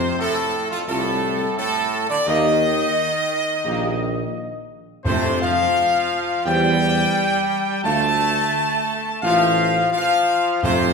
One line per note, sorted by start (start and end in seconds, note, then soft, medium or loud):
0.00 0.50 F2 loud
0.00 0.15 C3 loud
0.00 0.15 C5 loud
0.19 0.67 A2 loud
0.19 0.68 A4 loud
0.71 0.89 F2 loud
0.71 0.79 F4 loud
0.87 1.46 C2 loud
0.87 1.54 A2 loud
0.87 1.12 A3 medium
0.87 1.12 F4 loud
0.87 1.54 A4 loud
1.57 2.06 A2 loud
1.57 2.06 A4 loud
2.09 2.17 D3 loud
2.09 2.26 D5 loud
2.26 2.84 D#2 loud
2.26 4.65 D#3 loud
2.26 2.51 A#3 loud
2.26 2.51 G4 loud
2.26 4.70 D#5 loud
3.65 4.23 A#1 loud
3.65 3.89 A#3 loud
3.65 3.90 G4 loud
5.05 6.07 F2 loud
5.05 5.65 F2 loud
5.05 5.39 C3 loud
5.05 5.31 A3 loud
5.05 5.31 A4 loud
5.05 5.39 C5 loud
5.41 6.42 F3 loud
5.41 6.42 F5 loud
6.45 7.03 E2 loud
6.45 7.80 G3 loud
6.45 6.70 C4 loud
6.45 6.70 G4 loud
6.45 7.80 G5 loud
7.83 8.41 D2 loud
7.83 8.08 A3 loud
7.83 9.19 A3 loud
7.83 8.08 F4 loud
7.83 9.18 A5 loud
9.22 9.81 A1 loud
9.22 9.89 F3 loud
9.22 9.47 A3 loud
9.22 9.47 F4 loud
9.22 9.88 F5 loud
9.92 10.59 F3 loud
9.92 10.59 F5 loud
10.63 10.93 F2 loud
10.63 10.93 C3 loud
10.63 10.88 A3 loud
10.63 10.88 F4 loud
10.63 10.93 C5 loud